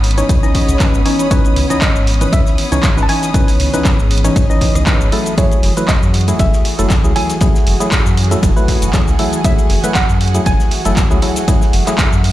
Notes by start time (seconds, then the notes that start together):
Already playing: G#1 E3 B3 C#4 G#4 C#5 G#5 B5 D#6, downlifter
0.03 open hi-hat, ride
0.11 closed hi-hat
0.18 E3 C#4 D#4 C#5, closed hi-hat, ride, cabasa
0.29 C#2, kick, closed hi-hat, ride, cabasa
0.43 E3 C#4 D#4 D#5, cabasa
0.55 kick, snare, open hi-hat, ride
0.68 C#2, closed hi-hat, cabasa
0.80 E3 C#4 D#4 B4, kick, snare, clap, closed hi-hat, ride, cabasa
0.94 G#1, cabasa
1.06 E3 C#4 D#4 C#5, open hi-hat, ride
1.19 closed hi-hat, cabasa
1.31 E3 C#4 D#4 B4 C#5, kick, closed hi-hat, ride, cabasa
1.45 ride, cabasa
1.56 C#2, snare, open hi-hat, ride
1.70 E3 C#4 D#4 D#5, closed hi-hat, cabasa
1.81 D#5, kick, snare, clap, closed hi-hat, ride, cabasa
1.96 G#1, cabasa
2.07 snare, open hi-hat, ride
2.14 closed hi-hat
2.21 D#3 E3 C#4 B4, closed hi-hat, cabasa
2.33 C#2 E5, kick, closed hi-hat, ride, cabasa
2.47 snare, cabasa
2.58 open hi-hat, ride
2.72 C#2 E3 C#4 D#4 C#5, closed hi-hat, cabasa
2.83 kick, snare, clap, closed hi-hat, ride, cabasa
2.97 G#1 E3 C#4 D#4 B4, cabasa
3.03 A5
3.09 E3 C#4 D#4 C#5 G#5, open hi-hat, ride
3.22 snare, closed hi-hat, cabasa
3.34 E3 C#4 D#4 B4, kick, closed hi-hat, ride, cabasa
3.48 snare, open hi-hat, cabasa
3.60 C#2, open hi-hat, ride
3.73 E3 C#4 D#4 B4, closed hi-hat, cabasa
3.85 kick, snare, clap, closed hi-hat, ride, cabasa
3.99 G#1, cabasa
4.11 open hi-hat, ride
4.18 closed hi-hat
4.24 E3 C#4 D#4 C#5, closed hi-hat, ride, cabasa
4.36 G#1, kick, closed hi-hat, ride, cabasa
4.50 E3 C#4 D#4 D#5, cabasa
4.61 kick, snare, open hi-hat, ride
4.75 C#2, cross-stick, closed hi-hat, cabasa
4.87 E3 C#4 D#4 B4, kick, snare, clap, closed hi-hat, ride, cabasa
5.01 G#1, cabasa
5.12 F#3 A3 E4 F#4 A4, open hi-hat, ride
5.26 closed hi-hat, cabasa
5.38 F#3 A3 E4 G#4 C#5, kick, closed hi-hat, ride, cabasa
5.51 ride, cabasa
5.63 F#1, snare, open hi-hat, ride
5.77 F#3 A3 E4 B4, closed hi-hat, cabasa
5.86 D#5 F#5, kick, snare, clap, closed hi-hat, ride, cabasa
6.02 F#2, cabasa
6.14 snare, open hi-hat, ride
6.21 closed hi-hat
6.28 F#3 A3 E4 G#4, closed hi-hat, cabasa
6.34 G#5
6.39 F#1 E5, kick, closed hi-hat, ride, cabasa
6.53 snare, cabasa
6.65 open hi-hat, ride
6.79 F#1 F#3 A3 E4 A4, closed hi-hat, cabasa
6.90 kick, snare, clap, closed hi-hat, ride, cabasa
7.04 C#2 F#3 A3 E4 G#4, cabasa
7.16 F#3 A3 E4 A4 G#5, open hi-hat, ride
7.30 snare, closed hi-hat, cabasa
7.41 F#3 A3 E4 G#4, kick, closed hi-hat, ride, cabasa
7.55 snare, cabasa
7.67 F#1, open hi-hat, ride
7.80 F#3 A3 E4 G#4, closed hi-hat, cabasa
7.92 kick, snare, clap, closed hi-hat, ride, cabasa
8.06 F#2, cabasa
8.17 open hi-hat, ride
8.24 closed hi-hat
8.31 F#3 A3 E4 A4, closed hi-hat, ride, cabasa
8.43 F#1, kick, closed hi-hat, ride, cabasa
8.56 F#3 A3 E4 B4, cabasa
8.68 kick, snare, open hi-hat, ride
8.82 F#1, closed hi-hat, cabasa
8.93 F#3 A3 E4 G#4, kick, snare, clap, closed hi-hat, ride, cabasa
9.07 C#2, cabasa
9.19 F#3 A3 E4 A4, open hi-hat, ride
9.33 closed hi-hat, cabasa
9.44 F#3 A3 E4 G#4 E5, kick, closed hi-hat, ride, cabasa
9.58 ride, cabasa
9.69 F#1, snare, open hi-hat, ride
9.84 F#3 A3 E4 B4, closed hi-hat, cabasa
9.95 F#5, kick, snare, clap, closed hi-hat, ride, cabasa
10.09 F#2, cabasa
10.21 snare, open hi-hat, ride
10.28 closed hi-hat
10.34 F#3 A3 E4 G#4, closed hi-hat, cabasa
10.46 F#1 G#5, kick, closed hi-hat, ride, cabasa
10.60 snare, cabasa
10.71 open hi-hat, ride
10.85 F#1 F#3 A3 E4 A4, closed hi-hat, cabasa
10.97 kick, snare, clap, closed hi-hat, ride, cabasa
11.11 C#2 F#3 A3 E4 G#4, cabasa
11.22 F#3 A3 E4 A4, open hi-hat, ride
11.36 snare, closed hi-hat, cabasa
11.48 F#3 A3 E4 G#4, kick, closed hi-hat, ride, cabasa
11.62 snare, cabasa
11.73 F#1, open hi-hat, ride
11.87 F#3 A3 E4 G#4, clap, closed hi-hat, cabasa
11.98 kick, snare, clap, closed hi-hat, ride, cabasa
12.12 F#2, cabasa
12.24 open hi-hat, ride